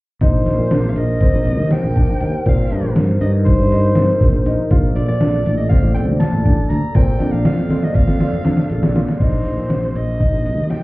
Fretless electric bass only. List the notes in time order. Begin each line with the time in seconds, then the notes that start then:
0.21 A#1
0.46 A#1
0.59 A#2
0.72 A#1
0.96 A#1
1.34 A#1
1.59 D#2
1.84 A#1
2.21 D#2
2.46 A#2
2.71 G2
2.83 A#1
2.96 G2
3.21 G2
3.59 G2
3.96 G2
4.21 A#1
4.33 A#1
4.71 A#1
4.95 A#1
5.08 A#2
5.20 A#1
5.46 A1
5.83 A1
6.08 D2
6.33 A1
6.70 D2
6.95 A#2
7.20 F2
7.32 A#1
7.45 F2
7.69 F2
8.08 F2
8.46 F2
8.71 A#1
8.83 A#1
9.20 A#1
9.45 A#1
9.58 A#2
9.70 A#1
9.95 A#1
10.32 A#1
10.58 D#2